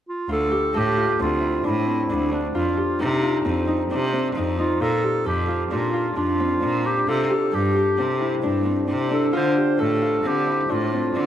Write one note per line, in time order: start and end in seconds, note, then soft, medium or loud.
0.09 0.29 F4 medium
0.28 0.47 D2 medium
0.28 0.97 F4 medium
0.28 0.78 A4 medium
0.51 2.77 G4 medium
0.74 1.12 A2 medium
0.74 1.21 G4 medium
0.74 2.94 A4 medium
0.97 1.47 F4 soft
1.19 1.57 D2 medium
1.19 1.86 C4 medium
1.19 1.63 F4 medium
1.41 2.61 E4 medium
1.64 2.02 A2 medium
1.64 2.09 D4 medium
1.64 2.29 E4 medium
1.87 3.44 C4 soft
2.10 2.47 D2 medium
2.10 2.31 D4 soft
2.32 3.73 D4 medium
2.32 2.57 D4 medium
2.55 2.74 F2 medium
2.55 3.22 F4 medium
2.55 3.02 F4 medium
2.77 5.03 G4 medium
3.00 3.37 C3 medium
3.00 3.91 D#4 medium
3.00 5.19 A4 medium
3.23 4.81 F4 medium
3.45 3.83 F2 medium
3.45 4.12 C4 medium
3.67 3.97 D#4 medium
3.90 4.28 C3 medium
3.90 4.43 D4 medium
4.13 6.40 C4 medium
4.35 4.73 F2 medium
4.35 4.59 D#4 medium
4.59 5.77 D#4 medium
4.59 4.83 F4 medium
4.80 4.99 A#2 medium
4.80 5.48 F4 medium
4.80 5.27 A4 medium
5.04 7.30 G4 medium
5.25 5.63 F2 medium
5.25 5.65 G4 medium
5.25 7.46 A4 medium
5.48 5.93 F4 medium
5.65 5.74 G4 soft
5.71 6.08 A#2 medium
5.71 6.16 D4 medium
5.71 6.16 F4 medium
5.94 7.08 F4 medium
6.16 6.54 F2 medium
6.16 6.62 D4 medium
6.16 6.88 F4 medium
6.40 7.98 C4 medium
6.61 6.99 A#2 medium
6.61 6.85 D4 medium
6.85 8.43 D4 medium
6.85 7.10 G4 medium
7.07 7.26 C3 medium
7.07 8.27 F4 medium
7.07 7.56 A4 medium
7.31 7.75 G4 medium
7.52 7.90 G2 medium
7.52 8.44 G4 medium
7.52 9.72 A4 medium
7.76 9.56 G4 medium
7.97 8.35 C3 medium
7.97 8.65 C4 medium
8.21 9.39 E4 medium
8.42 8.80 G2 medium
8.42 8.87 D4 medium
8.65 10.25 C4 medium
8.88 9.25 C3 medium
8.88 9.10 D4 soft
9.11 10.69 D4 medium
9.11 9.33 A4 medium
9.33 9.52 D3 medium
9.33 10.01 F4 medium
9.33 9.81 C5 medium
9.57 11.26 G4 medium
9.78 10.16 A2 medium
9.78 11.26 A4 medium
9.78 10.28 A4 medium
10.02 10.53 F4 medium
10.23 10.61 D3 medium
10.23 10.93 C4 medium
10.23 10.72 G4 medium
10.47 11.26 E4 medium
10.69 11.06 A2 medium
10.69 11.15 D4 medium
10.69 11.26 F4 medium
10.93 11.26 C4 soft
11.15 11.26 D3 medium
11.15 11.26 D4 medium